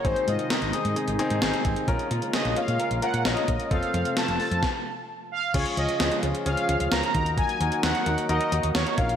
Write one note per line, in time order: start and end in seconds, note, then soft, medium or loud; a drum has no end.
0.05 0.13 G#1 loud
0.05 1.86 C3 medium
0.05 1.86 D#3 medium
0.05 1.86 G#3 medium
0.05 0.25 C4 medium
0.05 1.86 D#4 medium
0.05 0.25 D#4 medium
0.05 0.25 G#4 loud
0.05 0.28 C5 loud
0.05 kick loud
0.05 closed hi-hat medium
0.16 closed hi-hat soft
0.28 0.36 G#2 loud
0.28 0.48 C4 medium
0.28 0.48 D#4 medium
0.28 0.48 F4 medium
0.28 0.49 D#5 medium
0.28 closed hi-hat medium
0.39 closed hi-hat soft
0.50 0.71 C4 medium
0.50 0.71 D#4 medium
0.50 0.71 A#4 medium
0.50 1.61 D#5 loud
0.50 snare loud
0.50 closed hi-hat medium
0.62 0.71 G#1 loud
0.62 closed hi-hat soft
0.73 0.93 C4 medium
0.73 0.93 D#4 medium
0.73 0.93 G#4 medium
0.73 closed hi-hat medium
0.85 0.94 G#2 loud
0.85 closed hi-hat medium
0.96 1.16 C4 medium
0.96 1.16 D#4 medium
0.96 1.16 G#4 medium
0.96 closed hi-hat medium
1.08 1.17 G#1 loud
1.08 closed hi-hat medium
1.19 1.39 C4 loud
1.19 1.39 D#4 loud
1.19 1.39 G#4 loud
1.19 closed hi-hat medium
1.30 1.39 G#2 loud
1.30 closed hi-hat medium
1.42 1.51 G#1 loud
1.42 1.62 C4 loud
1.42 1.62 D#4 loud
1.42 1.62 G#4 loud
1.42 snare loud
1.42 closed hi-hat medium
1.54 closed hi-hat medium
1.65 1.74 G#1 loud
1.65 1.85 C4 medium
1.65 1.85 D#4 medium
1.65 1.85 G#4 loud
1.65 kick medium
1.65 closed hi-hat medium
1.76 closed hi-hat medium
1.88 1.97 A#1 loud
1.88 3.69 C#3 medium
1.88 3.69 G#3 medium
1.88 3.69 A#3 medium
1.88 2.08 C#4 loud
1.88 4.60 F4 medium
1.88 2.08 F4 loud
1.88 2.08 A#4 loud
1.88 kick loud
1.88 closed hi-hat medium
1.99 closed hi-hat soft
2.11 2.20 A#2 medium
2.11 2.31 C#4 medium
2.11 2.31 F4 medium
2.11 2.31 A#4 loud
2.11 closed hi-hat medium
2.22 closed hi-hat soft
2.33 2.54 C#4 medium
2.33 2.54 F4 medium
2.33 2.54 G#4 medium
2.33 2.57 D#5 medium
2.33 snare loud
2.33 closed hi-hat medium
2.45 2.54 A#1 medium
2.45 closed hi-hat soft
2.56 2.77 C#4 medium
2.56 2.77 F4 medium
2.56 2.77 C#5 medium
2.56 3.04 F5 medium
2.56 closed hi-hat medium
2.68 2.77 A#2 medium
2.68 closed hi-hat medium
2.79 3.00 C#4 medium
2.79 3.00 F4 medium
2.79 3.00 A#4 medium
2.79 closed hi-hat medium
2.91 3.00 A#1 medium
2.91 closed hi-hat medium
3.02 3.22 C#4 medium
3.02 3.22 F4 medium
3.02 3.22 A#4 loud
3.02 3.24 F#5 medium
3.02 closed hi-hat medium
3.14 3.23 A#2 loud
3.14 closed hi-hat medium
3.25 3.34 A#1 loud
3.25 3.45 C#4 loud
3.25 3.45 F4 medium
3.25 3.45 A#4 loud
3.25 3.73 D#5 medium
3.25 snare loud
3.25 closed hi-hat medium
3.37 closed hi-hat medium
3.48 3.57 A#1 loud
3.48 3.68 C#4 medium
3.48 3.68 F4 medium
3.48 3.68 A#4 medium
3.48 kick medium
3.48 closed hi-hat medium
3.60 closed hi-hat medium
3.71 3.80 F1 loud
3.71 4.62 C3 medium
3.71 4.62 F3 medium
3.71 4.62 A3 medium
3.71 3.91 C4 medium
3.71 3.91 F4 medium
3.71 3.91 A4 loud
3.71 4.18 F5 loud
3.71 kick loud
3.71 closed hi-hat medium
3.83 closed hi-hat soft
3.94 4.03 F2 medium
3.94 4.14 C4 medium
3.94 4.14 F4 medium
3.94 4.14 A4 medium
3.94 closed hi-hat medium
4.05 closed hi-hat medium
4.17 4.37 C4 medium
4.17 4.37 F4 medium
4.17 4.37 A4 medium
4.17 5.05 A5 loud
4.17 snare loud
4.17 closed hi-hat medium
4.28 4.37 F1 loud
4.28 closed hi-hat medium
4.40 4.60 C4 medium
4.40 4.60 F4 medium
4.40 4.60 A4 medium
4.40 open hi-hat medium
4.51 4.60 F2 loud
4.51 closed hi-hat medium
4.63 kick loud
4.63 snare medium
5.32 5.55 F5 loud
5.54 5.63 C#2 loud
5.54 7.13 C#3 medium
5.54 7.13 F3 medium
5.54 7.13 G#3 medium
5.54 5.74 C#4 loud
5.54 5.74 F4 medium
5.54 7.13 F4 medium
5.54 5.74 G#4 loud
5.54 5.76 C#5 loud
5.54 kick loud
5.54 closed hi-hat medium
5.54 crash loud
5.66 closed hi-hat soft
5.77 5.86 C#2 loud
5.77 5.97 C#4 medium
5.77 5.97 F4 medium
5.77 5.97 G#4 medium
5.77 6.20 D#5 medium
5.77 closed hi-hat medium
5.89 closed hi-hat medium
6.00 6.09 C#2 loud
6.00 6.20 C#4 medium
6.00 6.20 F4 medium
6.00 6.20 G#4 medium
6.00 snare loud
6.00 closed hi-hat medium
6.11 closed hi-hat medium
6.23 6.32 C#2 loud
6.23 6.43 C#4 medium
6.23 6.43 F4 medium
6.23 6.43 G#4 medium
6.23 closed hi-hat medium
6.35 closed hi-hat medium
6.46 6.55 C#2 loud
6.46 6.66 C#4 loud
6.46 6.66 F4 medium
6.46 6.66 G#4 loud
6.46 6.93 F5 loud
6.46 closed hi-hat medium
6.57 closed hi-hat medium
6.69 6.78 C#2 loud
6.69 6.89 C#4 medium
6.69 6.89 F4 medium
6.69 6.89 G#4 medium
6.69 closed hi-hat medium
6.80 6.89 C#2 loud
6.80 closed hi-hat medium
6.92 7.01 C#2 medium
6.92 7.12 C#4 medium
6.92 7.12 F4 medium
6.92 7.12 A#4 medium
6.92 7.39 A#5 loud
6.92 snare loud
6.92 closed hi-hat medium
7.03 closed hi-hat medium
7.15 7.41 D#2 loud
7.15 8.96 D#3 medium
7.15 8.96 F#3 medium
7.15 9.16 A#3 medium
7.15 7.55 D#4 medium
7.15 7.55 F#4 medium
7.15 8.96 F#4 medium
7.15 7.55 A#4 medium
7.15 kick medium
7.15 closed hi-hat medium
7.26 closed hi-hat medium
7.38 7.80 G#5 loud
7.38 kick loud
7.38 closed hi-hat medium
7.49 closed hi-hat soft
7.60 7.69 D#2 loud
7.60 7.81 D#4 medium
7.60 7.81 F#4 medium
7.60 7.81 A#4 medium
7.60 closed hi-hat medium
7.72 closed hi-hat medium
7.83 7.92 D#2 medium
7.83 8.03 D#4 medium
7.83 8.03 F#4 medium
7.83 8.03 A#4 medium
7.83 8.26 F#5 loud
7.83 snare loud
7.83 closed hi-hat medium
7.95 closed hi-hat medium
8.06 8.15 D#2 medium
8.06 8.26 D#4 medium
8.06 8.26 F#4 medium
8.06 8.26 A#4 medium
8.06 closed hi-hat medium
8.18 closed hi-hat medium
8.29 8.38 D#2 loud
8.29 8.49 D#4 loud
8.29 8.49 F#4 medium
8.29 8.49 A#4 loud
8.29 8.72 D#5 loud
8.29 closed hi-hat medium
8.41 closed hi-hat medium
8.52 8.61 D#2 loud
8.52 8.72 D#4 medium
8.52 8.72 F#4 medium
8.52 8.72 A#4 medium
8.52 closed hi-hat medium
8.63 8.72 D#2 loud
8.63 closed hi-hat medium
8.75 8.84 D#2 medium
8.75 8.95 D#4 medium
8.75 8.95 F#4 medium
8.75 8.95 A#4 medium
8.75 8.99 C#5 medium
8.75 snare loud
8.75 closed hi-hat medium
8.87 closed hi-hat medium
8.98 9.16 A#1 loud
8.98 9.16 C#3 medium
8.98 9.16 F3 medium
8.98 9.16 C#4 medium
8.98 9.16 F4 medium
8.98 9.16 A#4 medium
8.98 9.16 F5 medium
8.98 kick loud
8.98 closed hi-hat medium
9.09 closed hi-hat medium